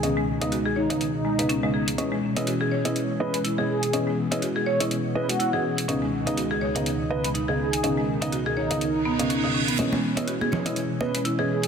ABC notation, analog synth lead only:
X:1
M:4/4
L:1/16
Q:"Swing 16ths" 1/4=123
K:C#dor
V:1 name="Analog synth lead"
G2 z4 D3 D6 z | z8 z2 B z3 G2- | G2 z4 c z3 B F3 z2 | z8 z2 B z3 G2- |
G2 z4 D3 D6 z | z8 z2 B z3 G2 |]